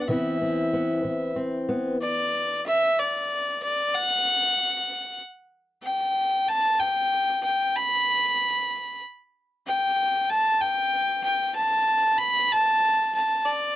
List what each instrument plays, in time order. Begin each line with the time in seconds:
0.01 fiddle F#5
0.08 steel-string acoustic guitar C3 E3 B3 C4 E4, fiddle E5
0.42 steel-string acoustic guitar C4
0.73 steel-string acoustic guitar B3
1.04 steel-string acoustic guitar E3
1.36 steel-string acoustic guitar C4
1.69 steel-string acoustic guitar B3
2.02 fiddle D5
2.67 fiddle E5
2.99 fiddle D5
3.63 fiddle D5
3.95 fiddle F#5
5.83 fiddle G5
6.48 fiddle A5
6.79 fiddle G5
7.43 fiddle G5
7.76 fiddle B5
9.66 fiddle G5
10.30 fiddle A5
10.61 fiddle G5
11.24 fiddle G5
11.56 fiddle A5
12.18 fiddle B5
12.52 fiddle A5
13.15 fiddle A5
13.45 fiddle D5